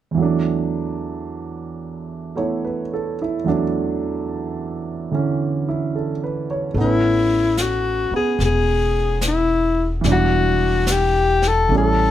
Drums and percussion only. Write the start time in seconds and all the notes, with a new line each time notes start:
6.75 brush sweep
7.57 snare, hi-hat pedal
8.40 brush sweep, snare
9.21 snare, hi-hat pedal
10.04 brush sweep, snare
10.87 snare, hi-hat pedal
11.42 snare
11.68 brush sweep